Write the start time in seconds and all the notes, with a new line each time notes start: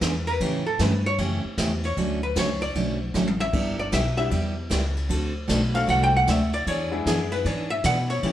0.01 E2 E3 B3 D4 G#4, kick, snare, hi-hat pedal, ride
0.27 B4, ride
0.40 A2 C#3 E3 A3 C#4 G4, kick, ride
0.66 A4
0.79 G2 C#3 E3 A3 C#4 G4 B4, kick, snare, hi-hat pedal, ride
1.06 C#5
1.18 F#2 C#3 E3 A3 C#4 G4, kick, ride
1.44 muted upright bass stroke
1.58 E2 C#3 E3 A3 C#4 G4, kick, snare, hi-hat pedal, ride
1.83 C#5, ride
1.97 D2 D3 F#3 A3 C#4 F#4, kick, ride
2.23 B4
2.36 C#2 D3 F#3 A3 C#4 F#4 C#5, kick, snare, hi-hat pedal, ride
2.62 D5, ride
2.75 B1 D3 F#3 A3 C#4 F#4, kick, ride
3.14 A1 D3 F#3 A3 C#4 F#4, snare, hi-hat pedal
3.27 high tom
3.40 E5, high tom
3.53 G1 G3 B3 E4 G4, kick, crash
3.79 D5
3.92 B1 G3 B3 E4 G4 E5, kick, snare, hi-hat pedal, ride
4.17 G3 B3 D4 E4 G4 E5, ride
4.31 E2 G3 B3 E4 G4, kick, ride
4.70 C#2 G3 B3 E4 G4, kick, snare, hi-hat pedal, ride
4.97 ride
5.09 D2 D3 A3 C4 F#4 A4, kick, ride
5.47 B1 D3 A3 C4 F#4 A4, kick, snare, hi-hat pedal, ride
5.74 A3 C4 D4 F#4 A4 F5, ride
5.87 C2 D3 A3 C4 F#4 A4 F#5, kick, ride
6.04 G5
6.16 F#5
6.27 D2 D3 A3 C4 F#4 A4 E5, kick, snare, hi-hat pedal, ride
6.53 D5, ride
6.67 E2 E3 B3 D4 G#4 C#5, kick, ride
6.91 G#3 B3 D4 E4 G#4
7.06 F#2 E3 B3 D4 G#4, kick, snare, hi-hat pedal, ride
7.32 B4, ride
7.44 G#2 E3 B3 D4 G#4 C#5, kick, ride
7.70 E5
7.84 B2 E3 B3 D4 G#4 F#5, kick, snare, hi-hat pedal, ride
8.10 C#5, ride
8.22 A2 C#3 E3 G3 A3 C#4 E4 G4, kick, ride